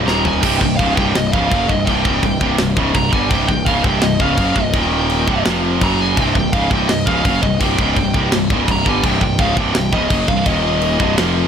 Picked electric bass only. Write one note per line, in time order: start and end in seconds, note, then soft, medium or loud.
0.06 0.40 D#1 loud
0.43 0.60 C1 medium
0.61 0.78 C1 medium
0.80 0.96 C#1 loud
0.97 1.14 C1 medium
1.16 1.32 C1 medium
1.34 1.50 C#1 medium
1.52 1.68 F#1 loud
1.69 1.86 C1 medium
1.87 2.04 C1 medium
2.05 2.22 C#1 medium
2.23 2.40 C1 medium
2.41 2.58 C1 loud
2.59 2.76 C1 medium
2.77 2.94 C#1 loud
2.95 3.11 C1 medium
3.13 3.29 G1 loud
3.31 3.48 C1 loud
3.49 3.65 C1 medium
3.67 3.83 C#1 medium
3.85 4.01 C1 loud
4.02 4.19 C1 medium
4.20 4.37 C#1 loud
4.38 4.55 F#1 loud
4.56 4.72 C1 medium
4.74 5.24 D#1 loud
5.28 5.44 C1 loud
5.46 5.79 F1 medium
5.82 6.15 F#1 medium
6.17 6.34 C1 medium
6.36 6.52 C1 medium
6.54 6.70 C#1 medium
6.71 6.88 C1 medium
6.91 7.06 C1 medium
7.07 7.24 C#1 medium
7.25 7.42 F#1 loud
7.43 7.60 C1 medium
7.61 7.77 C1 loud
7.79 7.95 C#1 medium
7.97 8.13 C1 medium
8.15 8.31 C1 loud
8.34 8.50 C1 medium
8.51 8.67 C#1 medium
8.68 8.85 C1 medium
8.86 9.03 G1 loud
9.04 9.20 C1 medium
9.22 9.38 C1 medium
9.39 9.56 C#1 medium
9.57 9.74 C1 loud
9.75 9.92 C1 medium
9.93 10.10 C#1 medium
10.11 10.28 F#1 loud
10.28 10.45 C1 medium
10.46 10.96 D#1 loud
11.00 11.17 C1 loud
11.19 11.48 F1 medium